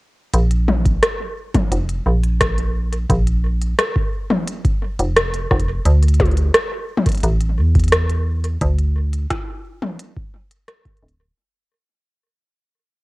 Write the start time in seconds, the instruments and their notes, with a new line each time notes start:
0.34 fm bass A#1, closed hi-hat
0.51 closed hi-hat
0.68 high tom
0.85 kick, closed hi-hat
1.03 cross-stick, closed hi-hat
1.54 kick, closed hi-hat, high tom
1.72 fm bass F1, closed hi-hat
1.89 closed hi-hat
2.06 fm bass A#1
2.23 closed hi-hat
2.41 kick, cross-stick, closed hi-hat
2.58 closed hi-hat
2.92 closed hi-hat
3.10 fm bass A#1, kick, closed hi-hat
3.27 closed hi-hat
3.61 closed hi-hat
3.79 cross-stick, closed hi-hat
3.96 kick
4.30 high tom
4.48 closed hi-hat
4.65 kick, closed hi-hat
4.99 fm bass F1, closed hi-hat
5.17 cross-stick, closed hi-hat
5.34 closed hi-hat
5.51 fm bass F1, kick, cross-stick
5.60 closed hi-hat
5.85 fm bass D2, closed hi-hat
6.03 closed hi-hat
6.08 closed hi-hat
6.14 closed hi-hat
6.20 kick, closed hi-hat, high tom
6.26 closed hi-hat
6.32 closed hi-hat
6.37 closed hi-hat
6.54 cross-stick, closed hi-hat
6.97 high tom
7.06 kick, closed hi-hat
7.09 closed hi-hat
7.12 closed hi-hat
7.15 closed hi-hat
7.18 closed hi-hat
7.20 closed hi-hat
7.23 fm bass A1, closed hi-hat
7.41 closed hi-hat
7.58 fm bass E2
7.75 kick, closed hi-hat
7.79 closed hi-hat
7.84 closed hi-hat
7.88 closed hi-hat
7.92 cross-stick, closed hi-hat
8.10 closed hi-hat
8.44 closed hi-hat
8.61 fm bass D2, kick, closed hi-hat
8.78 closed hi-hat
9.13 closed hi-hat
9.30 kick, cross-stick, closed hi-hat
9.82 high tom
9.99 closed hi-hat
10.16 kick
10.51 closed hi-hat
10.68 cross-stick, closed hi-hat
10.85 kick, closed hi-hat
10.97 closed hi-hat
11.03 fm bass D1
11.09 closed hi-hat